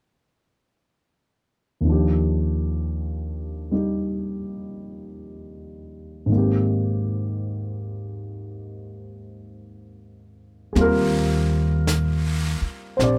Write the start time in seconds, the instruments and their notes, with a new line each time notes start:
1.81 grand piano D#2 D#3
1.86 grand piano F3 D4
1.92 grand piano G4
3.71 grand piano G3 D#4 G4
6.26 grand piano G#2 D#3
6.32 grand piano A#3 C4
6.37 grand piano G4
10.73 upright bass D#2, grand piano G3 A#3 C4 G#4, brush sweep, snare
10.77 grand piano F4 A#4
11.87 brush sweep, snare, hi-hat pedal
12.61 muted upright bass stroke
12.97 upright bass A#1, grand piano C4 D4 C5, brush sweep, snare
13.01 grand piano G4 D5